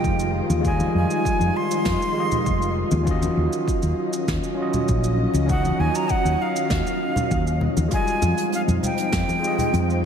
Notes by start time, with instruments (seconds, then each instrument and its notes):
Already playing: string machine D#3 F3 F4 D#5, tine electric piano G3 G#3 F4 G4 D#5, flute G5
0.04 fretless electric bass F1, kick, shaker
0.19 shaker
0.50 fretless electric bass D#2, high conga, shaker
0.60 tine electric piano G#3 F4
0.65 tine electric piano G3 D#5, string machine D#4, flute G#5, kick, shaker
0.80 high conga, shaker
0.95 fretless electric bass F2, flute G#5
1.11 shaker
1.25 kick, shaker
1.40 fretless electric bass F2, shaker
1.57 flute C6
1.71 shaker
1.85 fretless electric bass F2, kick, snare, shaker
2.02 shaker
2.12 tine electric piano G#3 F4
2.17 tine electric piano G4 D#5
2.32 low conga, shaker
2.46 fretless electric bass F1, kick, shaker
2.62 shaker
2.91 fretless electric bass D#2, high conga, shaker
3.03 tine electric piano C#4 F4, kick, shaker
3.08 string machine F#3 C#4 D#5, tine electric piano F#4 D#5
3.23 high conga, shaker
3.37 fretless electric bass D#2
3.53 shaker
3.68 kick, shaker
3.82 fretless electric bass D#2, shaker
4.13 shaker
4.28 fretless electric bass D#2, kick, snare, shaker
4.43 shaker
4.55 tine electric piano C#4 F4
4.60 tine electric piano F#4 D#5
4.74 low conga, shaker
4.88 fretless electric bass A#1, kick, shaker
5.04 shaker
5.34 fretless electric bass C#2, high conga, shaker
5.46 tine electric piano C#4 D#4, kick, shaker
5.50 tine electric piano F#4 D#5, flute F#5
5.65 high conga, shaker
5.79 fretless electric bass D#2, flute G#5
5.95 flute A#5, shaker
6.09 flute F#5, kick, shaker
6.25 fretless electric bass D#2, shaker
6.42 flute F5
6.56 shaker
6.70 fretless electric bass D#2, kick, snare, shaker
6.87 shaker
7.16 low conga, shaker
7.31 fretless electric bass D#2, kick, shaker
7.47 shaker
7.61 low conga
7.77 fretless electric bass D#2, high conga, shaker
7.88 tine electric piano G#3 F4, kick, closed hi-hat, shaker
7.92 string machine F3 C4 D#4 F4, tine electric piano G3 D#5, flute G#5
8.08 shaker
8.22 fretless electric bass F2, high conga, shaker
8.38 closed hi-hat, shaker
8.52 flute F5, closed hi-hat, shaker
8.68 fretless electric bass F2, high conga, low conga, shaker
8.83 flute G5, closed hi-hat, low conga, shaker
8.98 closed hi-hat, shaker
9.12 fretless electric bass F2, kick, snare, closed hi-hat, shaker
9.29 high conga, shaker
9.39 tine electric piano G#3 F4
9.44 tine electric piano G4 D#5, shaker
9.58 closed hi-hat, low conga, shaker
9.73 fretless electric bass F2, closed hi-hat, high conga, shaker
9.90 shaker